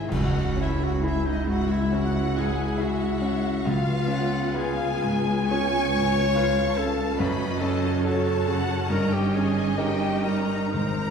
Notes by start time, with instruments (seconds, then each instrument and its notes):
Already playing: grand piano G#2 C4 D#4 G#4 C5, viola section C4, clarinet E4, violin section G#4 D#5
0.08 grand piano C#2, double bass section C#2, cello section C#2, timpani C#3, concert bass drum, crash
0.13 viola section G#3 E4, clarinet F#4, violin section F#5
0.56 grand piano C#4
0.60 clarinet E4, violin section E5
0.84 clarinet F#4, violin section F#5
1.02 grand piano E4 G#4, clarinet E4
1.07 violin section E5
1.26 clarinet D#4, violin section D#5
1.46 grand piano G#2, clarinet F#4, violin section F#5
1.71 clarinet E4, violin section E5
1.92 grand piano C#4, clarinet F#4, violin section F#5
2.34 grand piano G#2
2.39 clarinet G#4, violin section G#5
2.78 grand piano E4 G#4, clarinet F#4, violin section E5 F#5
3.21 grand piano C#4
3.65 grand piano C#2, double bass section C#2, cello section C#2, timpani C#3, viola section B3 F4, clarinet F4, violin section F5
4.07 grand piano C#4, violin section F#5
4.54 grand piano F4 B4, clarinet G#4, violin section F5 G#5
5.03 grand piano G#2, violin section G#5
5.50 grand piano C#4, clarinet C#5, violin section C#6
5.95 grand piano G#2
6.35 grand piano F4 B4, violin section F5
6.76 grand piano C#4, clarinet A4, violin section A5
7.19 double bass section F#1, grand piano F#2, cello section F#2, viola section C#4 F#4, clarinet B4, violin section D#5 B5
7.61 grand piano C#4, clarinet A4, violin section A5
8.03 grand piano F#4 A4, clarinet A4, violin section C#5 A5
8.46 grand piano C#3, violin section F#5
8.89 double bass section G1, grand piano G2, cello section G2, viola section D#4, clarinet A#4, violin section D#5 A#5
9.13 clarinet G4, violin section G5
9.35 grand piano C#4, clarinet G#4, violin section G#5
9.78 grand piano D#4 A#4, clarinet G4, violin section G5
10.24 grand piano G3, clarinet A#4, violin section A#5
10.72 double bass section G#1, cello section G#2, grand piano G#2, timpani G#2, viola section C4, clarinet A#4, violin section C5 A#5